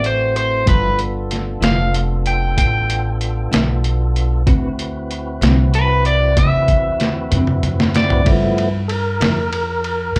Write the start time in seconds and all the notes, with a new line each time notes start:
Already playing: A1 E3 A3 C4 F#4
0.04 C5, closed hi-hat
0.36 C5, closed hi-hat
0.66 G1 G2 F3 B3 D4 E4 F4 A4 B4, kick, closed hi-hat
0.99 closed hi-hat
1.31 snare, closed hi-hat
1.61 F1 G2 F3 B3 E4 F5, snare, closed hi-hat
1.94 closed hi-hat
2.26 G5, closed hi-hat
2.58 A1 G5, kick, closed hi-hat
2.90 closed hi-hat
3.21 closed hi-hat
3.51 B1 G2 F3 B3 E4, snare, closed hi-hat
3.84 closed hi-hat
4.16 closed hi-hat
4.46 D2 D3 C4 E4 F#4 B4, kick, closed hi-hat
4.79 closed hi-hat
5.11 closed hi-hat
5.41 C2 D3 C4 F#4 B4, snare, closed hi-hat
5.74 B4, closed hi-hat
6.05 D5, closed hi-hat
6.37 E2 E5, kick, closed hi-hat, high tom
6.68 kick, closed hi-hat
7.00 snare, closed hi-hat
7.31 F#2 D3 C4 F#4 B4, closed hi-hat, mid tom
7.47 mid tom
7.63 closed hi-hat, mid tom
7.80 snare
7.94 D5, snare, closed hi-hat
8.10 floor tom
8.25 G2 F3 A3 B3 E4, kick, ride
8.58 ride
8.88 A4, ride
8.92 A#4
9.20 F2 G2 F3 B3 E4, snare, ride
9.53 ride
9.84 ride
10.16 E2, kick, ride